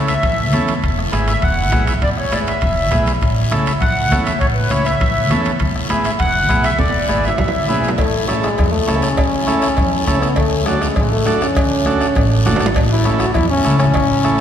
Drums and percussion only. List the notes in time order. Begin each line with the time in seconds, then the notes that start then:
0.08 high timbale, short guiro
0.23 bombo low, high conga, low conga, high timbale, long guiro
0.53 bombo rim, high conga, high timbale, short guiro
0.67 high timbale, short guiro
0.82 bombo low, high conga, high timbale, long guiro
0.99 bombo rim
1.12 bombo rim, high conga, high timbale, short guiro
1.28 high timbale, short guiro
1.42 bombo low, high conga, low conga, high timbale, long guiro
1.71 bombo low, bombo rim, high conga, high timbale, low timbale, short guiro
1.87 high timbale, short guiro
2.02 bombo low, high conga, low conga, high timbale, long guiro
2.17 bombo rim
2.31 bombo rim, high conga, high timbale, short guiro
2.46 high timbale, short guiro
2.61 bombo low, high conga, low conga, high timbale, long guiro
2.91 bombo low, bombo rim, high conga, high timbale, low timbale, short guiro
3.06 high timbale, short guiro
3.21 bombo low, high conga, high timbale, long guiro
3.51 bombo rim, high conga, high timbale, short guiro
3.66 high timbale, short guiro
3.80 bombo low, high conga, low conga, high timbale, long guiro
4.11 bombo low, bombo rim, high conga, high timbale, low timbale, short guiro
4.26 high timbale, short guiro
4.41 bombo low, high conga, high timbale, long guiro
4.70 bombo rim, high conga, high timbale, short guiro
4.85 high timbale, short guiro
5.00 bombo low, high conga, low conga, high timbale, long guiro
5.30 bombo rim, high conga, low conga, high timbale, short guiro
5.44 high timbale, short guiro
5.59 bombo low, high conga, low conga, high timbale, long guiro
5.76 bombo rim
5.89 bombo rim, high conga, high timbale, short guiro
6.04 high timbale, short guiro
6.19 bombo low, high conga, low conga, high timbale, long guiro
6.49 bombo low, bombo rim, high conga, low conga, high timbale, short guiro
6.64 high timbale, short guiro
6.79 bombo low, high conga, high timbale, long guiro
6.89 high timbale
7.09 bombo rim, high conga, short guiro
7.24 low timbale, short guiro
7.38 bombo low, high conga, low conga, low timbale, long guiro
7.48 low timbale
7.68 bombo rim, high conga, short guiro
7.83 short guiro
7.88 low timbale
7.98 bombo low, bombo rim, cowbell, long guiro
8.28 bombo rim, high conga, short guiro
8.43 bombo rim, short guiro
8.58 bombo low, bombo rim, cowbell, low conga, long guiro
8.73 high conga
8.88 bombo rim, high conga, low timbale, short guiro
9.02 bombo rim, short guiro
9.17 bombo low, bombo rim, cowbell, long guiro
9.47 bombo rim, high conga, short guiro
9.62 bombo rim, short guiro
9.77 bombo low, bombo rim, cowbell, low conga, long guiro
10.07 bombo low, bombo rim, high conga, short guiro
10.22 bombo rim, short guiro
10.36 bombo low, bombo rim, cowbell, long guiro
10.66 bombo rim, high conga, short guiro
10.82 bombo rim, short guiro
10.96 bombo low, bombo rim, cowbell, low conga, long guiro
11.12 high conga
11.26 bombo rim, high conga, low timbale, short guiro
11.41 bombo rim, short guiro
11.55 bombo low, bombo rim, cowbell, low conga, long guiro
11.85 bombo rim, high conga, short guiro
12.01 bombo rim, short guiro
12.15 bombo low, bombo rim, cowbell, low conga, high timbale, long guiro
12.45 bombo rim, high conga, low conga, low timbale, short guiro
12.56 low timbale, short guiro
12.61 bombo rim
12.66 low timbale
12.75 bombo low, bombo rim, cowbell, long guiro
13.04 bombo rim, high conga, short guiro
13.19 bombo rim, short guiro
13.34 bombo low, bombo rim, cowbell, low conga, long guiro
13.64 bombo rim, high conga, short guiro
13.79 bombo rim, short guiro
13.94 bombo low, bombo rim, cowbell, long guiro
14.23 bombo rim, high conga, short guiro